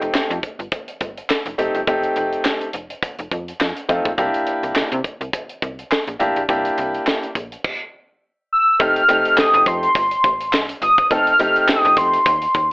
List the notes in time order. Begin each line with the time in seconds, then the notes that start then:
Already playing: A3 C4 D#4 G4
0.01 F1, closed hi-hat
0.14 F2, snare, clap
0.30 F2, closed hi-hat
0.43 kick, closed hi-hat
0.59 G1, closed hi-hat
0.72 kick, closed hi-hat
0.88 closed hi-hat
1.01 G1, kick, closed hi-hat
1.17 closed hi-hat
1.30 snare, clap
1.46 F1, closed hi-hat
1.58 F1 A3 C4 D#4 G4, closed hi-hat
1.75 G1, closed hi-hat
1.87 F1 A3 C4 D#4 G4, kick, closed hi-hat
2.03 closed hi-hat
2.16 F1, closed hi-hat
2.33 closed hi-hat
2.45 snare, clap
2.61 closed hi-hat
2.73 F1, closed hi-hat
2.90 closed hi-hat
3.03 kick, closed hi-hat
3.19 F1, closed hi-hat
3.31 F2, kick, closed hi-hat
3.48 closed hi-hat
3.60 F2, snare, clap
3.77 closed hi-hat
3.89 F2 A3 C4 D#4 F4, kick, closed hi-hat
4.05 A#1, kick, closed hi-hat
4.18 C2 A#3 D4 E4 G4, kick, closed hi-hat
4.34 closed hi-hat
4.47 closed hi-hat
4.63 C2, closed hi-hat
4.75 C3, snare, clap
4.92 C3, closed hi-hat
5.04 kick, closed hi-hat
5.21 C2, closed hi-hat
5.33 kick, closed hi-hat
5.49 closed hi-hat
5.62 C2, kick, closed hi-hat
5.79 closed hi-hat
5.91 snare, clap
6.07 A#1, closed hi-hat
6.19 A1 A#3 D4 E4 G4, closed hi-hat
6.36 A#1, closed hi-hat
6.48 C2 A#3 D4 E4 G4, kick, closed hi-hat
6.65 closed hi-hat
6.78 C2, closed hi-hat
6.94 closed hi-hat
7.07 snare, clap
7.23 closed hi-hat
7.35 A#1, kick, closed hi-hat
7.52 closed hi-hat
7.64 kick, crash
8.53 E6
8.79 F1 A3 C4 D#4 G4 F6, kick, closed hi-hat
8.96 closed hi-hat
9.08 F1 A3 C4 D#4 G4, closed hi-hat
9.25 closed hi-hat
9.37 D#6, snare, clap
9.54 F1, closed hi-hat
9.66 F2 C6, kick, closed hi-hat
9.83 closed hi-hat
9.95 G1, kick, closed hi-hat
10.11 closed hi-hat
10.24 A1, kick, closed hi-hat
10.41 closed hi-hat
10.53 C2, snare, clap
10.69 closed hi-hat
10.82 G1 D#6, closed hi-hat
10.98 kick, closed hi-hat
11.10 F1 A3 C4 D#4 A4 F6, kick, closed hi-hat
11.27 closed hi-hat
11.39 F1 A3 C4 D#4 G4, closed hi-hat
11.56 closed hi-hat
11.68 D#6, snare, clap
11.85 F1, closed hi-hat
11.97 F2 C6, kick, closed hi-hat
12.13 closed hi-hat
12.26 D#2, kick, closed hi-hat
12.42 closed hi-hat
12.55 D#2, kick, closed hi-hat